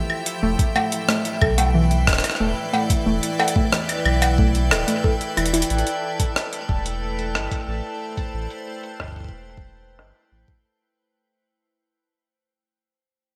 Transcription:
Already playing: F3 E4 G4 A4 E5 G5
0.10 high woodblock
0.26 closed hi-hat
0.43 E1 E3 A3
0.59 kick, closed hi-hat
0.76 A3, cowbell, high woodblock
0.92 B4, closed hi-hat
1.05 A3 E4, cross-stick
1.25 closed hi-hat
1.41 B1 A4, kick, high woodblock
1.58 A3, closed hi-hat, cowbell
1.74 E3 D5
1.91 closed hi-hat
2.07 D1, kick, cross-stick
2.13 cross-stick
2.18 cross-stick
2.24 cross-stick, closed hi-hat, high woodblock
2.30 cross-stick
2.35 cross-stick
2.40 E1 A3
2.73 A3, cowbell
2.90 kick, closed hi-hat
3.06 E1 A3
3.23 closed hi-hat
3.39 A4, cowbell, high woodblock
3.48 closed hi-hat
3.56 A3, kick
3.72 E3, cross-stick
3.89 closed hi-hat, high woodblock
4.05 B1, high woodblock
4.22 closed hi-hat, cowbell, high woodblock
4.38 A3, kick
4.55 closed hi-hat
4.71 D1 A4, cross-stick, high woodblock
4.88 A3, closed hi-hat
5.04 A4, kick
5.21 closed hi-hat
5.37 E1 E4, closed hi-hat, high woodblock
5.46 closed hi-hat
5.53 E4, closed hi-hat
5.62 closed hi-hat
5.70 A1 A3 A4 A5, closed hi-hat
5.78 closed hi-hat
5.87 closed hi-hat
6.20 kick, closed hi-hat
6.36 cross-stick
6.53 closed hi-hat
6.69 E1, kick
6.86 closed hi-hat
6.96 C5
7.19 closed hi-hat
7.35 G1, cross-stick
7.51 kick, closed hi-hat
7.68 A1
8.17 kick, closed hi-hat
8.34 A1
8.50 closed hi-hat
8.83 closed hi-hat
9.00 kick, cross-stick
9.04 kick
9.08 kick
9.12 kick
9.16 kick, closed hi-hat
9.20 kick
9.24 kick
9.29 kick
9.33 E1
9.49 closed hi-hat
9.57 kick
9.82 closed hi-hat
9.99 G1, cross-stick
10.15 closed hi-hat
10.32 A1
10.48 kick
10.81 closed hi-hat

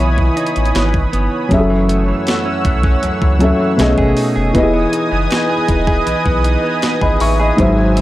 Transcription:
Already playing: C#3 E3 B3 D#4 E4 C#5 D#5 E5 G#5 B5 D#6
0.00 B1 E3
0.18 kick
0.36 D#4, closed hi-hat
0.47 closed hi-hat
0.56 A1, closed hi-hat
0.65 closed hi-hat
0.75 G#1 E3, snare, closed hi-hat
0.94 kick
1.13 G1 B3, closed hi-hat
1.49 F#1 F#2 F#3 C#4 G#4 C#5 F#5 E6, kick, closed hi-hat
1.54 E5
1.58 A4
1.70 E3
1.89 A3, closed hi-hat
2.08 E3
2.27 A3, snare, closed hi-hat
2.46 C#4
2.65 B1 A3, kick, closed hi-hat
2.83 C#4, kick
3.03 C#2 F#2, closed hi-hat
3.22 C#2 E3, kick
3.39 F#3 A3 C#4 A4, closed hi-hat
3.44 E5
3.60 E3
3.77 B1 B2 A3 C#4 G#4 G#5 D#6, snare, closed hi-hat
3.82 D#5
3.98 G#1 G#4, kick
4.17 D#4, open hi-hat
4.36 F1 G#4
4.53 E1 E3 B3 G4 B4 D#5, kick, closed hi-hat
4.58 D#5
4.63 G#4
4.73 B3
4.92 D#4, closed hi-hat
5.11 F#1 B3
5.30 D#4, snare, closed hi-hat
5.49 G#4
5.68 E1 D#4, kick, closed hi-hat
5.87 G#4, kick
6.07 B1 E3, closed hi-hat
6.25 B1 B3, kick
6.44 D#4, closed hi-hat
6.64 B3
6.82 D#4, snare, closed hi-hat
7.01 G#1 G#4 D#5 B5, kick
7.20 A1 D#4 E5 C#6, open hi-hat
7.40 G#4 D#5 B5
7.57 G#1 G#2 F#3 C5 F#5 G#5 E6, kick, closed hi-hat
7.61 E5
7.77 F#3
7.96 C4, closed hi-hat

